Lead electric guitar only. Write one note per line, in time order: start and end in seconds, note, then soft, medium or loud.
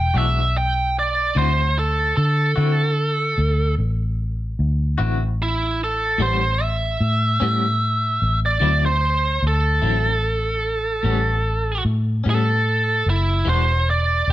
0.00 0.15 G5 medium
0.18 0.55 E5 medium
0.58 0.96 G5 medium
0.99 1.37 D5 medium
1.38 1.76 C5 medium
1.79 2.16 A4 medium
2.17 3.74 A4 medium
5.42 5.80 E4 medium
5.84 6.21 A4 medium
6.22 6.63 C5 medium
6.63 8.39 E5 medium
8.46 8.83 D5 medium
8.86 9.43 C5 medium
9.47 11.83 A4 medium
12.30 13.06 A4 medium
13.10 13.47 E4 medium
13.49 13.87 C5 medium
13.90 14.28 D5 medium